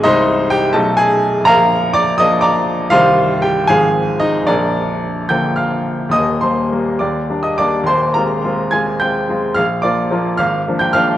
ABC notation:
X:1
M:6/8
L:1/16
Q:3/8=73
K:Bbmix
V:1 name="Grand piano"
[Ece]4 [Gg]2 [=A^d=a]2 [_A_a]4 | [Bfb]4 [dd']2 [ee']2 [dbd']4 | [Fcf]4 [Gg]2 [Afa]4 [Ee]2 | [DBd]6 [gg']2 [ff']4 |
[ee']2 [cc']4 [dd']3 [ee'] [dd']2 | [cc']2 [Bb]4 [aa']2 [gg']4 | [ff']2 [dd']4 [ff']3 [gg'] [ff']2 |]
V:2 name="Grand piano" clef=bass
[C,,,C,,A,C]6 [=B,,,,=B,,,=A,^D]6 | [B,,,,B,,,]6 [F,B,D]6 | [C,,,C,,E,G,C]6 [A,,,A,,E,F,C]6 | [B,,,,B,,,]6 [D,F,B,]6 |
[E,,,E,,]2 [G,B,]2 [G,B,]2 E,,2 [G,B,D]2 [G,B,D]2 | [E,,,E,,]2 [A,CF]2 [A,CF]2 [A,CF]2 [A,CF]2 [A,CF]2 | B,,,2 [F,B,F]2 [F,B,F]2 A,,,2 [F,B,D]2 [F,B,D]2 |]